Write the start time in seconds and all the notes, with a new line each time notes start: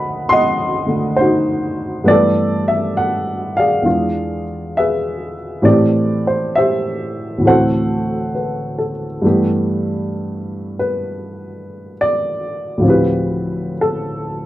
Already playing: D2 D3 C4 D#4 F#4 C5 D#5 F#5 A5 B5
0.29 D#5 F#5 C6
0.86 D3 A3
1.16 C5
1.21 D#4 F#4
2.04 G2 E3 A3 B3 B4 D5
2.11 A4 B4
2.68 E5
2.97 F#5
3.57 G#4 D5 F5
3.81 E2 E3 G#3 D4
3.86 F4
4.77 G#4 B4 E5
5.62 A2 E3 A3 C4 G4 D5
5.68 G4
6.27 C5
6.55 G4 C5 E5
7.38 D2 A2
7.43 E3 A3 C4 C5
7.47 F#4 A4 F#5
8.35 B4
8.78 A4
9.22 G2 E3 A3 B3
9.26 G4
10.79 B4
12.01 D5
12.77 D2 A2 F3
12.83 C4 E4
12.88 G4 B4
13.81 A4